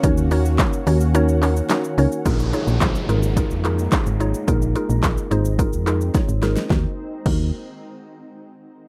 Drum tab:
CC |----------------|----------------|----------------|----x-----------|
HH |x-o-x-o-x-o-x-o-|x-x-x-x-x-x-x-x-|x-x-x-x-x-x-x-x-|----------------|
SH |xxxxxxxxxxxxxxxx|xxxxxxxxxxxxxxxx|xxxxxxxxxxxxxxxx|----------------|
CP |----x-----x-x---|----x-----x-x---|----x-----x-----|----------------|
SD |----o-------o---|----o-------o---|----o-------o-oo|o---------------|
BD |o---o-----------|o---o---o---o---|o---o---o---o---|o---o-----------|